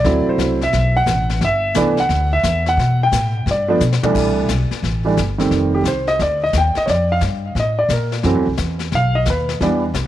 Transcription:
0.00 0.26 D5 medium
0.04 0.25 D2 medium
0.04 0.57 F#3 medium
0.04 0.57 A3 medium
0.04 0.57 C4 medium
0.04 0.57 E4 medium
0.04 brush sweep soft
0.04 snare soft
0.27 0.60 C5 medium
0.27 muted upright bass stroke soft
0.38 0.72 C2 medium
0.38 snare medium
0.38 hi-hat pedal medium
0.61 0.94 E5 medium
0.61 snare soft
0.73 1.05 B1 medium
0.73 brush sweep soft
0.73 snare soft
0.96 1.39 F#5 loud
1.06 1.40 A1 medium
1.06 snare medium
1.06 hi-hat pedal medium
1.30 snare soft
1.41 1.75 G1 medium
1.41 1.75 E5 medium
1.41 brush sweep soft
1.41 snare soft
1.74 2.08 C2 medium
1.74 1.95 E3 medium
1.74 1.96 A3 medium
1.74 1.96 B3 medium
1.74 1.96 D4 medium
1.74 snare medium
1.74 hi-hat pedal medium
1.97 2.31 F#5 medium
1.97 snare soft
2.09 2.42 D2 medium
2.09 brush sweep soft
2.09 snare soft
2.33 2.64 E5 medium
2.43 2.77 E2 medium
2.43 snare medium
2.43 hi-hat pedal medium
2.66 2.99 F#5 medium
2.66 snare soft
2.77 3.11 B2 medium
2.77 brush sweep soft
2.77 snare soft
3.03 3.45 G5 medium
3.12 3.45 A2 medium
3.12 snare medium
3.12 hi-hat pedal medium
3.46 3.79 G2 medium
3.46 brush sweep soft
3.46 snare soft
3.51 3.80 D5 medium
3.68 3.79 F3 medium
3.68 3.79 A3 medium
3.68 3.80 B3 medium
3.68 3.80 D4 medium
3.80 4.01 B2 loud
3.80 snare soft
3.80 hi-hat pedal medium
3.92 snare medium
4.03 4.46 C2 medium
4.03 4.47 E3 medium
4.03 4.47 G3 medium
4.03 4.47 A3 medium
4.03 4.47 D4 medium
4.03 muted upright bass stroke soft
4.03 mid tom medium
4.14 4.48 C2 medium
4.14 brush sweep soft
4.14 kick medium
4.14 snare soft
4.14 crash medium
4.49 4.69 B1 medium
4.49 snare medium
4.49 hi-hat pedal medium
4.71 muted upright bass stroke soft
4.71 snare soft
4.82 5.16 A1 medium
4.82 brush sweep soft
4.82 snare soft
5.05 5.16 E3 medium
5.05 5.16 G3 medium
5.05 5.16 A3 medium
5.05 5.17 D4 medium
5.17 5.50 G1 medium
5.17 snare medium
5.17 hi-hat pedal medium
5.38 5.82 D#3 medium
5.38 5.83 G3 medium
5.38 5.83 A3 medium
5.38 5.83 C4 medium
5.38 snare soft
5.50 5.83 F1 medium
5.50 brush sweep soft
5.50 snare soft
5.75 5.86 G4 medium
5.84 6.18 C2 medium
5.84 6.08 C5 medium
5.84 snare medium
5.84 hi-hat pedal medium
6.07 6.19 D#5 loud
6.07 snare soft
6.19 6.53 D2 medium
6.19 6.42 D5 medium
6.19 brush sweep soft
6.19 snare soft
6.44 6.54 D#5 medium
6.53 6.74 D#2 medium
6.53 snare medium
6.53 hi-hat pedal medium
6.58 6.77 G5 medium
6.75 6.88 D#5 medium
6.75 muted upright bass stroke soft
6.75 snare soft
6.86 7.21 F2 medium
6.86 6.88 C#5 medium
6.86 brush sweep soft
6.86 snare soft
6.90 7.10 D5 medium
7.12 7.19 F5 medium
7.21 7.54 G2 medium
7.21 snare medium
7.21 hi-hat pedal medium
7.55 7.88 A2 medium
7.55 brush sweep soft
7.55 snare soft
7.60 7.79 D#5 medium
7.79 7.90 D5 medium
7.89 8.23 A#2 medium
7.89 8.13 A#4 soft
7.89 snare medium
7.89 hi-hat pedal medium
8.12 snare soft
8.23 8.35 F#2 medium
8.23 8.44 E3 medium
8.23 8.44 F#3 medium
8.23 8.45 A3 medium
8.23 8.45 C4 medium
8.23 brush sweep soft
8.23 snare soft
8.35 8.46 E2 medium
8.47 8.57 C2 medium
8.57 8.91 E2 medium
8.57 snare medium
8.57 hi-hat pedal soft
8.79 snare soft
8.92 9.25 B1 medium
8.92 9.16 F5 loud
8.92 brush sweep soft
8.92 snare soft
9.15 9.27 D#5 medium
9.25 9.60 D#2 medium
9.25 snare medium
9.25 hi-hat pedal medium
9.30 9.50 B4 medium
9.49 snare soft
9.60 9.93 E2 medium
9.60 9.81 E3 medium
9.60 9.81 G3 medium
9.60 9.81 B3 medium
9.60 9.82 D4 medium
9.60 brush sweep soft
9.60 snare soft
9.94 10.05 C2 medium
9.94 snare medium
9.94 hi-hat pedal medium

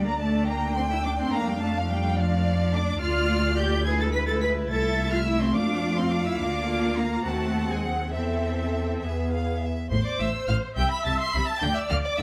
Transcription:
0.00 1.29 D2 medium
0.00 2.98 A3 medium
0.00 2.98 D4 medium
0.00 0.47 D5 medium
0.06 0.20 A#3 medium
0.06 0.20 A#5 medium
0.20 0.48 A3 medium
0.20 0.48 A5 medium
0.47 0.77 A#3 medium
0.47 1.33 G5 medium
0.47 0.76 A#5 medium
0.76 0.82 C4 medium
0.76 0.82 C6 medium
0.90 0.96 E4 medium
0.90 1.05 E6 medium
1.05 1.10 D4 medium
1.05 1.10 D6 medium
1.19 1.33 C4 medium
1.19 1.34 C6 medium
1.33 2.98 F2 medium
1.33 1.48 A#3 medium
1.33 2.18 F5 medium
1.33 1.47 A#5 medium
1.47 1.61 G3 medium
1.47 1.62 G5 medium
1.61 1.75 A3 medium
1.61 1.76 A5 medium
1.75 1.89 F3 medium
1.75 1.91 F5 medium
1.89 2.18 G3 medium
1.89 2.18 G5 medium
2.17 2.74 F3 medium
2.17 3.00 D5 medium
2.17 2.74 F5 medium
2.74 3.02 D4 medium
2.74 3.02 D6 medium
3.01 4.67 D2 medium
3.01 3.82 A3 medium
3.01 3.82 F4 medium
3.01 3.57 F4 medium
3.01 3.84 D5 medium
3.01 3.57 F6 medium
3.58 3.86 G4 medium
3.58 3.86 G6 medium
3.86 4.66 G#3 medium
3.86 5.51 E4 medium
3.86 4.00 G#4 medium
3.86 4.69 B4 medium
3.86 3.91 G#6 medium
4.00 4.14 A4 medium
4.00 4.06 A6 medium
4.13 4.28 B4 medium
4.13 4.19 B6 loud
4.28 4.42 A4 medium
4.28 4.34 A6 medium
4.41 4.50 B4 medium
4.41 4.49 B6 medium
4.70 5.54 C2 medium
4.70 6.36 A3 medium
4.70 5.12 A4 medium
4.70 5.54 E5 medium
4.70 5.12 A6 medium
5.12 5.18 F4 medium
5.12 5.27 F6 medium
5.27 5.41 E4 medium
5.27 5.41 E6 medium
5.41 5.55 C4 medium
5.41 5.56 C6 medium
5.55 6.40 F2 medium
5.55 5.98 D4 medium
5.55 6.36 F4 medium
5.55 7.23 F5 medium
5.55 5.98 D6 medium
5.98 6.12 C4 medium
5.98 6.12 C6 medium
6.11 6.26 D4 medium
6.11 6.26 D6 medium
6.26 6.40 E4 medium
6.26 6.40 E6 medium
6.39 7.22 D2 medium
6.39 7.22 A#3 medium
6.39 6.98 D4 medium
6.39 7.22 F4 medium
6.39 6.96 D6 medium
6.97 7.26 A#3 medium
6.97 7.26 A#5 medium
7.26 8.12 D#2 medium
7.26 7.70 A3 medium
7.26 8.12 C4 soft
7.26 7.69 F#4 medium
7.26 8.12 F#5 medium
7.26 7.69 A5 medium
7.69 7.84 G#3 medium
7.69 8.13 G#4 soft
7.69 7.85 G#5 medium
7.84 8.14 F#3 soft
7.84 8.13 F#5 medium
8.13 9.01 E2 soft
8.13 9.02 E3 medium
8.13 9.01 C4 soft
8.13 9.00 A4 soft
8.13 8.94 E5 soft
8.13 9.00 E5 medium
9.02 9.69 E2 soft
9.02 9.70 B3 soft
9.02 9.70 G#4 soft
9.02 9.29 E5 soft
9.31 9.61 F5 soft
9.61 9.90 E5 soft
9.90 9.98 A1 medium
9.90 9.99 A2 medium
9.90 10.73 C5 medium
9.90 10.04 C5 medium
9.90 10.04 C6 medium
10.06 10.20 D5 medium
10.06 10.20 D6 medium
10.19 10.28 A1 medium
10.19 10.28 A2 medium
10.19 10.28 E5 medium
10.19 10.48 E6 medium
10.48 10.56 A1 medium
10.48 10.57 A2 medium
10.48 10.57 F5 medium
10.48 10.56 F6 medium
10.77 10.85 C2 medium
10.77 10.85 C3 medium
10.77 11.62 E5 medium
10.77 10.92 G5 medium
10.77 10.91 G6 medium
10.92 11.06 B5 medium
10.92 11.06 B6 medium
11.05 11.14 C2 medium
11.05 11.13 C3 medium
11.05 11.19 A5 medium
11.05 11.11 A6 medium
11.20 11.34 C6 medium
11.20 11.34 C7 medium
11.33 11.42 C2 medium
11.33 11.42 C3 medium
11.33 11.48 B5 medium
11.33 11.48 B6 medium
11.47 11.62 A5 medium
11.47 11.62 A6 medium
11.62 11.71 D2 medium
11.62 11.71 D3 medium
11.62 12.22 D5 medium
11.62 11.76 G5 medium
11.62 11.76 G6 medium
11.75 11.81 E5 medium
11.75 11.91 E6 medium
11.90 11.98 D2 medium
11.90 11.98 D3 medium
11.90 11.96 F5 medium
11.90 11.96 F6 medium
12.05 12.11 D5 medium
12.05 12.19 D6 medium
12.18 12.22 D2 medium
12.18 12.22 D3 medium
12.18 12.22 E5 medium
12.18 12.22 E6 medium

